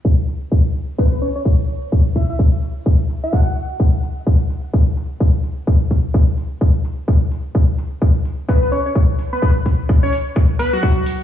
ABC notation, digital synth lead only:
X:1
M:4/4
L:1/16
Q:"Swing 16ths" 1/4=128
K:Bdor
V:1 name="Digital synth lead"
z8 B B c c z4 | z2 e e z6 z e f4 | z16 | z16 |
z8 B B c c z3 B | B z4 c z4 B F4- F |]